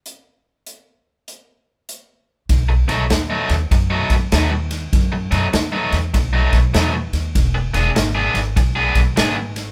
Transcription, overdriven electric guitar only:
X:1
M:4/4
L:1/16
Q:"Swing" 1/4=99
K:Bmix
V:1 name="Overdriven electric guitar"
z16 | z2 [B,,F,A,D] z2 [B,,F,A,D] z3 [B,,F,A,D] z2 [B,,F,A,D] z3 | z2 [B,,F,A,D] z2 [B,,F,A,D] z3 [B,,F,A,D] z2 [B,,F,A,D] z3 | z2 [E,B,=DG] z2 [E,B,DG] z3 [E,B,DG] z2 [E,B,DG] z3 |]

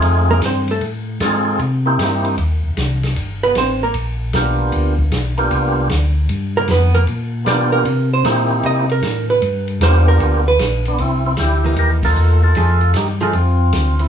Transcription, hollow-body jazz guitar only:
X:1
M:4/4
L:1/8
Q:"Swing" 1/4=153
K:Gmix
V:1 name="Hollow-body jazz guitar"
z [_B,_B] [Cc] [A,A] z4 | z8 | z [B,B] [Cc] [^A,^A] z4 | z8 |
z [^A,^A] [B,B] [A,A] z2 d A- | ^A c2 z ^d _B2 =B- | B z c ^A2 B2 z | z3 [E,_B,^D]2 [B,D]3 |
[F,A,_E^G] z2 [F,A,EG] z4 |]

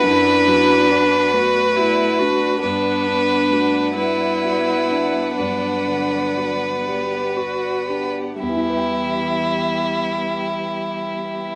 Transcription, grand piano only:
X:1
M:6/8
L:1/8
Q:3/8=42
K:Em
V:1 name="Grand piano"
[F,,D] F, F B F D | G,, D F B F D | G,, D, F B F D | [E,,E,EGBg]6 |]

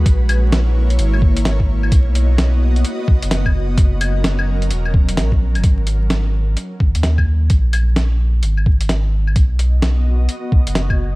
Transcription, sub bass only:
X:1
M:4/4
L:1/16
Q:"Swing 16ths" 1/4=129
K:G#m
V:1 name="Sub bass" clef=bass
A,,,8 G,,,8 | B,,,8 z2 B,,, F,,,4- F,,, | F,,,8 E,,,4 A,,,2 A,,, F,,, | G,,,8 z2 G,,, D,,4- D,, |
A,,,8 G,,,8 | B,,,8 z2 B,,, F,,,4- F,,, |]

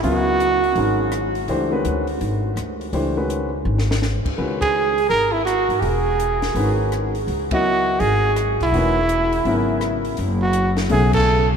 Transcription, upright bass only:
X:1
M:4/4
L:1/8
Q:"Swing" 1/4=166
K:C#dor
V:1 name="Upright bass" clef=bass
C,,4 G,,,4 | C,,2 =D,,2 G,,,2 D,,2 | C,,4 G,,,3 z | C,,4 G,,,3 G,, |
E,,,4 G,,,4 | C,,4 G,,,3 B,,, | E,,,4 G,,,4 | [K:F#m] F,,,4 B,,,4 |]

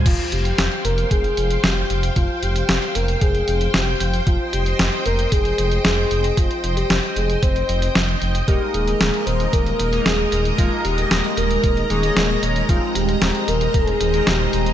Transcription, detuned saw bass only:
X:1
M:4/4
L:1/8
Q:1/4=114
K:Fm
V:1 name="Detuned saw bass" clef=bass
F,,, F,,, F,,, F,,, F,,, F,,, F,,, F,,, | F,,, F,,, F,,, F,,, F,,, F,,, F,,, F,,, | F,,, F,,, F,,, F,,, F,,, F,,, F,,, F,,, | F,,, F,,, F,,, F,,, F,,, F,,, F,,, F,,, |
E,,, E,,, E,,, E,,, E,,, E,,, E,,, E,,, | E,,, E,,, E,,, E,,, E,,, E,,, E,,, E,,, | E,,, E,,, E,,, E,,, E,,, E,,, E,,, E,,, |]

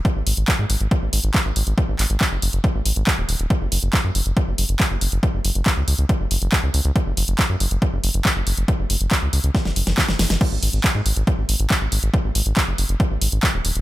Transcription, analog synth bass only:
X:1
M:4/4
L:1/16
Q:1/4=139
K:none
V:1 name="Analog synth bass" clef=bass
z ^G,,, G,,, G,,, z ^G,, G,,, G,,, z G,,, G,,, G,,, z G,,, G,,, G,,, | z ^G,,, G,,, G,,, z ^F,,, F,,, F,,, z G,,, G,,, G,,, z ^D,,, D,,, D,,, | z ^F,,, F,,, F,,, z ^F,, F,,, F,,, z F,,, F,,, F,,, z F,,, F,,, F,,, | z ^F,,, F,,, F,,, z ^C,, C,, C,, z F,,, F,,, F,,, z C,, C,, C,, |
z ^F,,, F,,, F,,, z ^F,, F,,, F,,, z F,,, F,,, F,,, z F,,, F,,, F,,, | z ^F,,, F,,, F,,, z ^C,, C,, C,, z F,,, F,,, F,,, z F,,, F,,, F,,, | z ^G,,, G,,, G,,, z ^G,, G,,, G,,, z G,,, G,,, G,,, z G,,, G,,, G,,, | z ^G,,, G,,, G,,, z ^F,,, F,,, F,,, z G,,, G,,, G,,, z ^D,,, D,,, D,,, |]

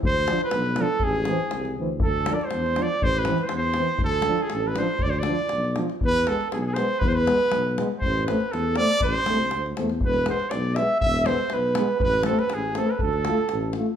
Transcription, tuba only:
X:1
M:2/4
L:1/8
Q:"Swing 16ths" 1/4=120
K:none
V:1 name="Tuba" clef=bass
D,,2 B,,,2 | A,,,2 C,, D,, | D,,2 E,,2 | A,,,2 E,,2 |
D,,2 A,,,2 | D,,2 B,,,2 | E,,2 B,,,2 | E,,2 B,,,2 |
A,,,2 E,,2 | A,,, C,, D,, E,, | E,,,2 B,,,2 | E,,,2 B,,,2 |
A,,,2 A,,,2 | D,,2 A,,,2 |]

